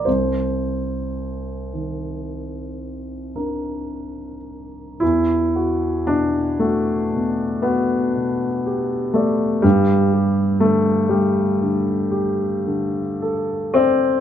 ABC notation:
X:1
M:9/8
L:1/8
Q:3/8=38
K:Cm
V:1 name="Grand piano"
C,,3 E,3 [DB]3 | [K:Em] E,, F B,, F B,, F B,, G d | G,, G D, G D, G D, A d |]
V:2 name="Grand piano"
c6 z3 | [K:Em] E2 D A,2 B,3 A, | G,2 A, G,4- G, C |]